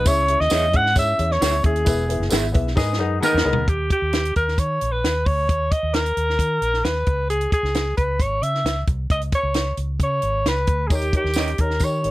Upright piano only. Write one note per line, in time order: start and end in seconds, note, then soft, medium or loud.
0.04 0.70 C#3 medium
0.04 0.20 C#4 medium
0.04 0.20 E4 loud
0.04 0.21 G#4 medium
0.04 0.21 C#5 medium
0.04 0.21 E5 loud
0.27 0.43 C#4 medium
0.27 0.43 E4 medium
0.27 0.43 G#4 medium
0.27 0.44 C#5 medium
0.27 0.44 E5 medium
0.49 0.65 C#4 medium
0.49 0.66 E4 medium
0.49 0.66 G#4 medium
0.49 0.66 C#5 medium
0.49 0.66 E5 loud
0.71 0.88 C#4 medium
0.71 0.88 E4 medium
0.71 0.88 G#4 medium
0.71 0.88 C#5 medium
0.71 0.89 E5 medium
0.95 1.11 C#4 medium
0.95 1.11 E4 medium
0.95 1.11 G#4 medium
0.95 1.11 C#5 medium
0.95 1.12 E5 loud
1.17 1.33 C#4 medium
1.17 1.34 E4 medium
1.17 1.34 G#4 medium
1.17 1.34 C#5 medium
1.17 1.34 E5 medium
1.40 1.56 C#4 medium
1.40 1.57 E4 medium
1.40 1.57 G#4 medium
1.40 1.57 C#5 medium
1.40 1.57 E5 medium
1.63 1.79 C#4 medium
1.63 1.79 E4 medium
1.63 1.79 G#4 medium
1.63 1.79 C#5 medium
1.63 1.80 E5 medium
1.85 2.50 E3 medium
1.85 2.01 B3 medium
1.85 2.01 E4 medium
1.85 2.01 G#4 medium
1.85 2.02 B4 loud
1.85 2.02 E5 loud
2.07 2.23 B3 medium
2.07 2.24 E4 medium
2.07 2.24 G#4 medium
2.07 2.25 B4 medium
2.07 2.25 E5 medium
2.29 2.46 B3 loud
2.29 2.46 E4 loud
2.29 2.47 G#4 medium
2.29 2.47 B4 medium
2.29 2.47 E5 loud
2.52 2.69 B3 medium
2.52 2.69 E4 medium
2.52 2.69 G#4 medium
2.52 2.69 B4 medium
2.52 2.70 E5 loud
2.75 3.41 G#2 medium
2.75 2.92 D#4 loud
2.75 2.92 G#4 medium
2.75 2.92 A#4 medium
2.75 2.92 B4 loud
2.75 2.92 D#5 loud
2.97 3.14 D#4 medium
2.97 3.14 G#4 medium
2.97 3.14 A#4 medium
2.97 3.15 B4 medium
2.97 3.15 D#5 medium
2.97 3.20 F#5 medium
3.20 3.37 D#4 loud
3.20 3.37 G#4 medium
3.20 3.37 A#4 medium
3.20 3.37 B4 medium
3.20 3.38 D#5 loud
3.20 3.43 G#5 medium
3.44 3.60 D#4 medium
3.44 3.60 G#4 medium
3.44 3.60 A#4 medium
3.44 3.60 B4 medium
3.44 3.61 D#5 loud
3.44 3.66 B5 medium
10.90 11.55 D#3 medium
10.90 11.05 D#4 loud
10.90 11.06 G4 medium
10.90 11.06 A#4 medium
10.90 11.06 C#5 loud
11.12 11.28 D#4 medium
11.12 11.29 G4 medium
11.12 11.29 A#4 medium
11.12 11.29 C#5 medium
11.36 11.51 D#4 medium
11.36 11.51 G4 medium
11.36 11.51 A#4 medium
11.36 11.52 C#5 medium
11.58 11.74 D#4 medium
11.58 11.74 G4 medium
11.58 11.74 A#4 medium
11.58 11.75 C#5 medium
11.81 11.96 D#4 medium
11.81 11.97 G4 medium
11.81 11.97 A#4 medium
11.81 11.97 C#5 medium
12.02 12.11 D#4 medium
12.02 12.11 G4 medium
12.02 12.11 A#4 medium
12.02 12.11 C#5 medium